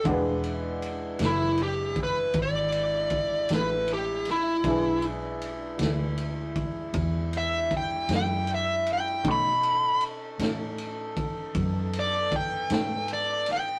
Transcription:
<<
  \new Staff \with { instrumentName = "Lead electric guitar" } { \time 12/8 \key e \mixolydian \tempo 4. = 52 r4. e'8 g'8 b'8 d''4. b'8 g'8 e'8~ | e'8 r2. e''8 g''8 g''8 e''8 g''8 | b''4 r2 r8 d''8 g''8 g''8 d''8 g''8 | }
  \new Staff \with { instrumentName = "Upright piano" } { \time 12/8 \key e \mixolydian <gis d' b' fis''>1. | <d' e' gis' b'>1. | <dis' a' cis'''>1. | }
  \new Staff \with { instrumentName = "Horn section" } { \time 12/8 \key e \mixolydian << { <gis e'>1.~ | <gis e'>1. | <dis' a'>1. | } \\ { d'1.~ | d'1. | cis'2. b2. | } >> }
  \new Staff \with { instrumentName = "Clean electric guitar" } { \time 12/8 \key e \mixolydian <e gis d' fis'>8 r4 <e gis d' fis'>8 r2 r8 <e gis d' fis'>8 r4 | r4. <e gis d' fis'>8 r2 r8 <e gis d' fis'>8 r4 | <b, a cis' dis'>8 r4 <b, a cis' dis'>8 r2 r8 <b, a cis' dis'>8 r4 | }
  \new Staff \with { instrumentName = "Fingered electric bass" } { \clef bass \time 12/8 \key e \mixolydian e,,4. fis,,4. gis,,4. a,,4. | b,,4. d,4. e,4. fis,4. | b,4. a,4. fis,4. gis,4. | }
  \new DrumStaff \with { instrumentName = "Drums" } \drummode { \time 12/8 <bd cymr>8 cymr8 cymr8 <cymr sn>8 cymr8 <bd cymr>8 <bd cymr>8 cymr8 <bd cymr>8 <cymr sn>8 cymr8 <cymr sn>8 | <bd cymr>8 cymr8 cymr8 <cymr sn>8 cymr8 <bd cymr>8 <bd cymr>8 cymr8 <bd cymr>8 <cymr sn>8 cymr8 cymr8 | <bd cymr>8 cymr8 cymr8 <cymr sn>8 cymr8 <bd cymr>8 <bd cymr>8 cymr8 <bd cymr>8 <cymr sn>8 cymr8 <cymr sn>8 | }
>>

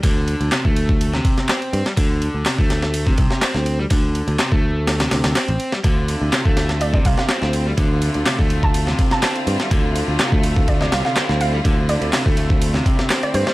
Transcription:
<<
  \new Staff \with { instrumentName = "Synth pluck" } { \time 4/4 \key d \minor \tempo 4 = 124 r1 | r1 | r1 | r2 d''16 d''16 f''16 f''16 r4 |
r4. r16 a''16 r8. a''16 a''16 r8. | r2 d''16 d''16 f''16 f''16 r8 f''16 r16 | r8 d''16 r2 r8 d''16 c''16 c''16 | }
  \new Staff \with { instrumentName = "String section" } { \time 4/4 \key d \minor r1 | r1 | r1 | <d a c' e' f'>1~ |
<d a c' e' f'>1~ | <d a c' e' f'>1~ | <d a c' e' f'>1 | }
  \new Staff \with { instrumentName = "Overdriven electric guitar" } { \clef bass \time 4/4 \key d \minor d4 c16 a4 c8. c'8. g16 | d4 c16 a4 c8. c'8. g16 | d4 c16 a4 c8. c'8. g16 | d4 c16 a4 c8. c'8. g16 |
d4 c16 a4 c8. c'8. g16 | d4 c16 a4 c8. c'8. g16 | d4 c16 a4 c8. c'8. g16 | }
  \new Staff \with { instrumentName = "Picked electric bass" } { \clef bass \time 4/4 \key d \minor d,8 r16 d,16 r16 d,4 r4 r16 g,16 r16 | d,8 r16 d,16 r16 d,4 r16 c,16 r8 d,8 r16 | d,8 r16 d,16 r16 d,4 r16 d,16 d,16 r16 a,,16 r8 | d,8 r16 d,16 r16 d,4 r16 c,16 r8 d,8 r16 |
d,8 r16 d,16 r16 d,4 r4 r16 g,16 r16 | d,8 r16 d,16 r16 d,4 r16 c,16 r8 d,8 r16 | d,8 r16 d,16 r16 d,4 r4 r16 g,16 r16 | }
  \new DrumStaff \with { instrumentName = "Drums" } \drummode { \time 4/4 <bd cymr>8 cymr16 cymr16 <hc cymr sn>16 bd16 cymr16 bd16 cymr16 sn16 <bd cymr>16 sn16 <hc cymr sn>16 cymr16 cymr16 sn16 | <bd cymr>8 cymr8 <hc cymr sn>16 bd16 <cymr sn>16 sn16 cymr16 bd16 <bd cymr>16 sn16 <hc cymr sn>16 sn16 cymr8 | <bd cymr>8 cymr16 cymr16 <hc cymr sn>16 bd8. <cymr sn>16 <cymr sn>16 <cymr sn>16 <cymr sn>16 <hc cymr sn>16 cymr16 cymr16 sn16 | <bd cymr>8 cymr8 <hc cymr sn>16 bd16 <cymr sn>16 sn16 cymr16 bd16 <bd cymr>16 sn16 <hc cymr sn>16 sn16 cymr8 |
<bd cymr>8 cymr16 cymr16 <hc cymr sn>16 bd16 cymr16 bd16 cymr16 sn16 <bd cymr>16 sn16 <hc cymr sn>16 cymr16 cymr16 sn16 | <bd cymr>8 cymr8 <hc cymr sn>16 bd16 cymr16 bd16 <bd cymr>16 sn16 <cymr sn>16 sn16 <hc cymr sn>16 sn16 cymr8 | <bd cymr>8 cymr16 cymr16 <hc cymr sn>16 bd16 cymr16 bd16 cymr16 sn16 <bd cymr>16 sn16 <hc cymr sn>16 cymr16 cymr16 sn16 | }
>>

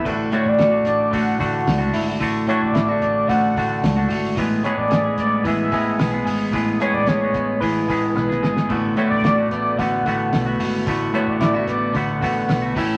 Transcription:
<<
  \new Staff \with { instrumentName = "Soft synth lead" } { \time 4/4 \key d \lydian \tempo 4 = 111 r8 cis''16 d''8. d''8 fis''4. r8 | r8 cis''16 d''8. d''8 fis''4. r8 | r8 cis''16 d''8. d''8 e''4. r8 | r8 cis''16 d''16 cis''4 b'4 b'8. r16 |
r8 cis''16 d''8. d''8 fis''4. r8 | r8 cis''16 d''8. d''8 fis''4. r8 | }
  \new Staff \with { instrumentName = "Clean electric guitar" } { \time 4/4 \key d \lydian a,8 a8 fis'8 d'8 d8 fis'8 d'8 e'16 fis'16 | a,8 a8 e'16 fis'16 d'8 d8 fis'8 d'8 fis'8 | a,8 gis8 gis'8 b8 e8 gis'8 b8 gis'8 | a,8 gis8 gis'8 b8 e8 gis'8 b8 gis'8 |
a,8 a8 fis'8 b8 d8 fis'8 b8 fis'8 | a,8 a8 e'16 fis'16 b8 d8 fis'8 b8 a,8 | }
  \new Staff \with { instrumentName = "Clean electric guitar" } { \time 4/4 \key d \lydian <d a d' fis'>8 <a, d a d' fis'>8. <a d' fis'>8. <d a d' fis'>8 <a, d a d' fis'>8. <a d' fis'>8. | <d a d' fis'>8 <a, d a d' fis'>8. <a d' fis'>8. <d a d' fis'>8 <a, d a d' fis'>8. <a d' fis'>8. | <e gis b gis'>8 <a, e gis b gis'>8. <gis b gis'>8. <e gis b gis'>8 <a, e gis b gis'>8. <gis b gis'>8. | <e gis b gis'>8 <a, e gis b gis'>8. <gis b gis'>8. <e gis b gis'>8 <a, e gis b gis'>8. <gis b gis'>8. |
<d a b fis'>8 <a, d a b fis'>8. <a b fis'>8. <d a b fis'>8 <a, d a b fis'>8. <a b fis'>8. | <d a b fis'>8 <a, d a b fis'>8. <a b fis'>8. <d a b fis'>8 <a, d a b fis'>8. <a b fis'>16 <a, e a cis' e'>8 | }
  \new Staff \with { instrumentName = "Fingered electric bass" } { \clef bass \time 4/4 \key d \lydian a,,8 r16 a,,16 a,,8 a,,8 a,,8 a,,8 cis,8 gis,,8 | a,,8 r16 a,,16 a,,8 a,,8 a,,8 a,,8 cis,8 gis,,8 | a,,8 r16 a,,16 a,,8 a,,8 a,,8 a,,8 b,,8 gis,,8 | a,,8 r16 a,,16 a,,8 a,,8 a,,8 a,,8 b,,8 gis,,8 |
a,,8 r16 a,,16 a,,8 a,,8 a,,8 a,,8 b,,8 gis,,8 | a,,8 r16 a,,16 a,,8 a,,8 a,,8 a,,8 b,,8 a,,8 | }
  \new DrumStaff \with { instrumentName = "Drums" } \drummode { \time 4/4 <cymc bd>8 <hho hhp>8 <hho hhp sn>8 <hho hhp>8 <hho hhp bd>8 <hho hhp bd>8 <hho hhp sn>8 <hho hhp>8 | <hho hhp bd>8 <hho hhp sn>8 <hho hhp sn>8 <hho hhp>8 <hho hhp bd>8 <hho hhp bd>8 <hho hhp sn>8 <hho hhp>8 | <hho hhp bd>8 <hho hhp sn>8 <hho hhp sn>8 <hho hhp>8 <hho hhp bd>8 <hho hhp bd>8 <hho hhp sn>8 <hho hhp>8 | <hho hhp bd>8 <hho hhp>8 <hho hhp sn>8 <hho hhp bd>8 <hho hhp bd>8 <hho hhp bd>8 sn16 sn16 sn16 sn16 |
<cymc bd>8 <hho hhp sn>8 <hho hhp sn>8 <hho hhp>8 <hho hhp bd>8 <hho hhp bd>8 <hho hhp sn>8 <hho hhp>8 | <hho hhp bd>8 <hho hhp sn>8 <hho hhp sn>8 <hho hhp>8 <hho hhp bd>8 <hho hhp bd>8 <hho hhp sn>8 <hho hhp bd>8 | }
>>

